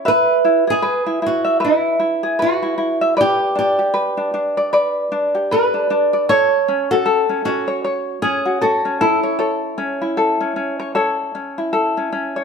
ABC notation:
X:1
M:4/4
L:1/16
Q:"Swing 16ths" 1/4=77
K:Emix
V:1 name="Ukulele"
[Be]2 E G B E E e [Be]2 E G B E E e | [Bd]2 D =G B D D d [Bd]2 D G B D D d | [Ac]2 C F A C C c c2 C F A C A c | [Ac]2 C E A C C c [Ac]2 C E A C C c |]
V:2 name="Nylon-string guitar"
B3 G3 F2 E4 F4 | =G2 G8 z2 B4 | c3 A3 F4 G2 F2 E2- | E12- E2 z2 |]